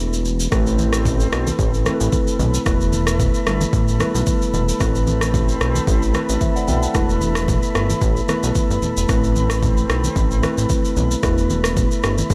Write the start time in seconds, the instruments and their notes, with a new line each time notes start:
Already playing: analog synth bass E1, tine electric piano A3 B3 E4 B4, flute section A4 E5 B5
0.13 shaker
0.25 shaker
0.40 shaker
0.51 analog synth bass A1, tine electric piano A3 C4 E4 B4, flute section C4 A4 B5, kick, cross-stick, shaker
0.67 shaker
0.79 high conga, shaker
0.93 cross-stick, shaker
1.05 kick, low conga, shaker
1.20 shaker
1.32 analog synth bass B1, cross-stick, shaker
1.47 high conga, shaker
1.59 analog synth bass A1, kick, shaker
1.74 shaker
1.85 tine electric piano A3 C4 E4 A4, cross-stick, high conga, shaker
1.94 tine electric piano B4
2.00 analog synth bass A1, shaker
2.12 kick, high conga, shaker
2.28 shaker
2.39 analog synth bass B1, high conga, low conga, shaker
2.54 shaker
2.65 analog synth bass E1, tine electric piano A3 B3 E4 B4, flute section E5, kick, cross-stick, shaker
2.81 shaker
2.93 high conga, shaker
3.07 cross-stick, shaker
3.19 kick, low conga, shaker
3.34 shaker
3.46 analog synth bass G1, cross-stick, shaker
3.61 high conga, shaker
3.73 analog synth bass A1, kick, shaker
3.88 shaker
3.99 tine electric piano G3 B3 E4 B4, cross-stick, high conga, shaker
4.05 tine electric piano A3
4.15 analog synth bass B1, shaker
4.27 kick, high conga, shaker
4.42 shaker
4.53 analog synth bass E1, high conga, low conga, shaker
4.69 shaker
4.79 analog synth bass A1, tine electric piano A3 C4 E4 B4, flute section C4, kick, cross-stick, shaker
4.95 shaker
5.07 high conga, shaker
5.21 cross-stick, shaker
5.34 kick, low conga, shaker
5.49 shaker
5.61 analog synth bass B1, cross-stick, shaker
5.75 high conga, shaker
5.87 analog synth bass A1, kick, shaker
6.02 shaker
6.13 tine electric piano A3 C4 E4 B4, cross-stick, high conga, shaker
6.29 analog synth bass A1, shaker
6.41 tine electric piano C5 E5, kick, high conga, shaker
6.56 tine electric piano D5 F#5, shaker
6.68 analog synth bass B1, tine electric piano E5 G5, high conga, low conga, shaker
6.83 tine electric piano F#5 A5, shaker
6.93 analog synth bass E1, tine electric piano A3 B3 E4 B4, flute section E5, kick, cross-stick, shaker
7.09 shaker
7.21 high conga, shaker
7.35 cross-stick, shaker
7.48 kick, low conga, shaker
7.63 shaker
7.75 analog synth bass G1, cross-stick, shaker
7.90 high conga, shaker
8.02 analog synth bass A1, kick, shaker
8.17 shaker
8.27 tine electric piano A3 B3 E4 B4, cross-stick, high conga, shaker
8.43 analog synth bass B1, shaker
8.55 kick, high conga, shaker
8.70 analog synth bass G1, shaker
8.82 high conga, low conga, shaker
8.97 analog synth bass E1, shaker
9.08 analog synth bass A1, tine electric piano A3 C4 E4 B4, flute section C4, kick, cross-stick, shaker
9.24 shaker
9.36 high conga, shaker
9.50 cross-stick, shaker
9.63 kick, low conga, shaker
9.77 shaker
9.89 analog synth bass B1, cross-stick, shaker
10.04 high conga, shaker
10.16 analog synth bass A1, kick, shaker
10.31 shaker
10.42 tine electric piano A3 C4 E4 B4, cross-stick, high conga, shaker
10.58 analog synth bass A1, shaker
10.69 kick, high conga, shaker
10.85 shaker
10.97 analog synth bass B1, high conga, low conga, shaker
11.11 shaker
11.22 analog synth bass E1, tine electric piano A3 B3 E4 B4, flute section E5, kick, cross-stick, shaker
11.38 shaker
11.50 high conga, shaker
11.64 cross-stick, shaker
11.77 kick, low conga, shaker
11.91 shaker
12.04 analog synth bass G1, cross-stick, shaker
12.18 high conga, shaker
12.30 analog synth bass A1, kick, shaker